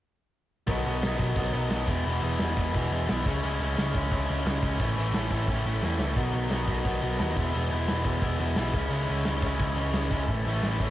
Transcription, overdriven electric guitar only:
0.67 B2 D#3 F#3 B3 D#4
0.85 B2 D#3 F#3 B3 D#4
1.01 B2 D#3 F#3 B3 D#4
1.18 B2 D#3 F#3 B3 D#4
1.36 B2 D#3 F#3 B3 D#4
1.53 B2 D#3 F#3 B3 D#4
1.69 B2 D#3 F#3 B3 D#4
1.87 E3 G#3 B3 E4
2.05 E3 G#3 B3 E4
2.21 E3 G#3 B3 E4
2.40 E3 G#3 B3 E4
2.56 E3 G#3 B3 E4
2.74 E3 G#3 B3 E4
2.90 E3 G#3 B3 E4
3.08 E3 G#3 B3 E4
3.25 C#3 G#3 C#4 E4
3.42 C#3 G#3 C#4 E4
3.60 C#3 G#3 C#4 E4
3.78 C#3 G#3 C#4 E4
3.95 C#3 G#3 C#4 E4
4.11 C#3 G#3 C#4 E4
4.28 C#3 G#3 C#4 E4
4.46 C#3 G#3 C#4 E4
4.62 C#3 G#3 C#4 E4
4.80 A2 E3 A3 C#4 E4
4.96 A2 E3 A3 C#4 E4
5.14 A2 E3 A3 C#4 E4
5.32 A2 E3 A3 C#4 E4
5.49 A2 E3 A3 C#4 E4
5.66 A2 E3 A3 C#4 E4
5.82 A2 E3 A3 C#4 E4
5.99 A2 E3 A3 C#4 E4
6.15 B2 D#3 F#3 B3 D#4
6.33 B2 D#3 F#3 B3 D#4
6.51 B2 D#3 F#3 B3 D#4
6.68 B2 D#3 F#3 B3 D#4
6.84 B2 D#3 F#3 B3 D#4
7.01 B2 D#3 F#3 B3 D#4
7.18 B2 D#3 F#3 B3 D#4
7.36 E3 G#3 B3 E4
7.54 E3 G#3 B3 E4
7.71 E3 G#3 B3 E4
7.89 E3 G#3 B3 E4
8.05 E3 G#3 B3 E4
8.22 E3 G#3 B3 E4
8.38 E3 G#3 B3 E4
8.57 E3 G#3 B3 E4
8.74 C#3 G#3 C#4 E4
8.91 C#3 G#3 C#4 E4
9.09 C#3 G#3 C#4 E4
9.26 C#3 G#3 C#4 E4
9.42 C#3 G#3 C#4 E4
9.59 C#3 G#3 C#4 E4
9.77 C#3 G#3 C#4 E4
9.93 C#3 G#3 C#4 E4
10.11 C#3 G#3 C#4 E4
10.28 A2 E3 A3 C#4 E4
10.45 A2 E3 A3 C#4 E4
10.62 A2 E3 A3 C#4 E4
10.80 A2 E3 A3 C#4 E4

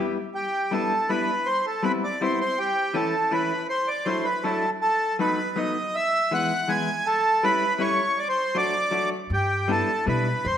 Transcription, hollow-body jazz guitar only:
Already playing: G3 B3 E4 G4
0.71 G3 B3 D4 E4
1.09 G3 B3 D4 E4
1.83 G3 B3 C4 E4
2.21 G3 B3 C4 E4
2.94 E3 A3 C#4 E4
3.31 E3 A3 C#4 E4
4.06 F#3 A3 D4 E4
4.44 F#3 A3 D4 E4
5.19 F#3 A3 B3 D#4
5.56 F#3 A3 B3 D#4
6.31 E3 G#3 B3 E4
6.68 E3 G#3 B3 E4
7.43 G3 A3 C#4 E4
7.78 G3 A3 C#4 E4
8.55 F#3 A3 D4 F#4
8.91 F#3 A3 D4 F#4
9.68 G3 B3 D4 E4
10.06 G3 B3 D4 E4

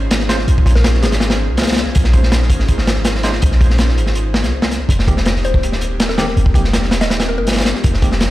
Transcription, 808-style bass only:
Already playing: G#1
0.48 A#1
1.03 G#1
1.49 C2
1.96 A#1
2.50 G#1
3.43 A#1
3.97 G#1
4.43 C2
4.89 F1
5.45 D#1
6.37 F1
6.92 D#1
7.38 G1
7.84 F1

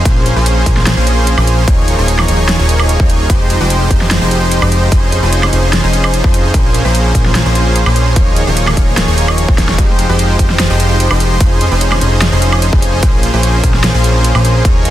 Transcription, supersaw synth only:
0.06 F3 A#3 C#4 G#4 C5
0.36 F3 A#3 C#4 G#4 C5
0.66 F3 A#3 C#4 G#4 C5
0.97 F3 A#3 C#4 G#4 C5
1.38 F3 A#3 C#4 G#4 C5
1.68 F3 A#3 D#4 G#4 C#5
1.99 F3 A#3 D#4 G#4 C#5
2.28 F3 A#3 D#4 G#4 C#5
2.59 F3 A#3 D#4 G#4 C#5
3.00 F3 A#3 D#4 G#4 C#5
3.30 F3 G#3 D#4 G4 C5
3.61 F3 G#3 D#4 G4 C5
3.91 F3 G#3 D#4 G4 C5
4.21 F3 G#3 D#4 G4 C5
4.62 F3 G#3 D#4 G4 C5
4.92 F3 C#4 D#4 G#4 C5
5.23 F3 C#4 D#4 G#4 C5
5.53 F3 C#4 D#4 G#4 C5
5.84 F3 C#4 D#4 G#4 C5
6.24 F3 C#4 D#4 G#4 C5
6.54 F3 A#3 C#4 G#4 C5
6.85 F3 A#3 C#4 G#4 C5
7.15 F3 A#3 C#4 G#4 C5
7.46 F3 A#3 C#4 G#4 C5
7.86 F3 A#3 C#4 G#4 C5
8.16 F3 A#3 D#4 G#4 C#5
8.47 F3 A#3 D#4 G#4 C#5
8.77 F3 A#3 D#4 G#4 C#5
9.08 F3 A#3 D#4 G#4 C#5
9.49 F3 A#3 D#4 G#4 C#5
9.78 F3 G#3 D#4 G4 C5
10.09 F3 G#3 D#4 G4 C5
10.39 F3 G#3 D#4 G4 C5
10.70 F3 G#3 D#4 G4 C5
11.11 F3 G#3 D#4 G4 C5
11.41 F3 C#4 D#4 G#4 C5
11.71 F3 C#4 D#4 G#4 C5
12.01 F3 C#4 D#4 G#4 C5
12.32 F3 C#4 D#4 G#4 C5
12.73 F3 C#4 D#4 G#4 C5
13.03 F3 A#3 C#4 G#4 C5
13.34 F3 A#3 C#4 G#4 C5
13.64 F3 A#3 C#4 G#4 C5
13.95 F3 A#3 C#4 G#4 C5
14.35 F3 A#3 C#4 G#4 C5
14.65 F3 A#3 D#4 G#4 C#5

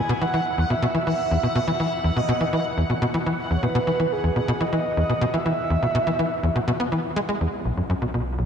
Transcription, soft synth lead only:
Already playing: G#5
0.21 F#5
0.70 E5
1.68 E5
2.16 D#5
3.56 C#5
3.63 B4
4.12 G#4
4.61 D#5
5.34 E5

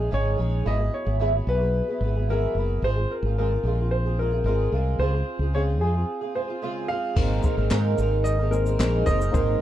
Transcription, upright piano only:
Already playing: G#4
0.14 C#5
0.67 D#5
0.94 C#5
1.49 B4
2.30 A#4
2.84 C5
3.11 A#4
3.38 A#4
3.91 C5
4.19 A#4
4.46 A#4
4.99 C5
5.55 C#5
5.81 G#4
6.35 C5
6.88 F5
8.24 D#5
8.51 A#4
9.06 D#5

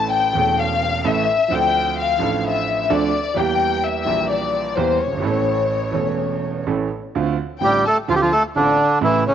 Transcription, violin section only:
0.14 G5
0.59 F5
1.08 E5
1.54 G5
1.99 F5
2.48 E5
2.93 D5
3.38 G5
3.86 E5
4.30 D5
4.76 C5
5.00 C#5
7.62 G5
7.86 A5
8.09 F5
8.15 G5
8.21 F5
8.32 A5
8.57 D5
9.04 E5
9.27 C#5

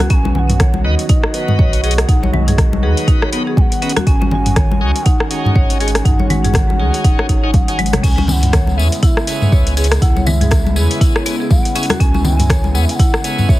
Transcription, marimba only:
0.00 F#4
0.10 C#4
0.25 C#4
0.60 C#5
1.09 D#4
1.59 C#5
1.84 G#4
2.09 D#4
2.23 C#5
2.33 G#3
2.48 G#4
2.83 G#4
3.08 D#4
3.22 C#5
3.33 B3
3.47 G#4
3.82 C#4
3.97 F#4
4.07 C#4
4.21 C#4
4.56 C#5
5.06 D#4
5.56 C#5
5.81 G#4
6.05 D#4
6.20 C#5
6.30 G#3
6.44 G#4
6.80 G#4
7.04 D#4
7.19 C#5
7.29 D#4
7.44 D#4
7.79 G#3
7.93 C#5
8.03 C#4
8.18 C#4
8.53 C#5
9.03 E4
9.53 C#5
9.77 G#4
10.02 E4
10.16 C#5
10.27 G#3
10.41 G#4
10.76 G#4
11.01 E4
11.16 C#5
11.26 B3
11.40 G#4
11.76 C#4
11.90 F#4
12.00 C#4
12.15 C#4
12.50 C#5
13.00 E4
13.49 C#5

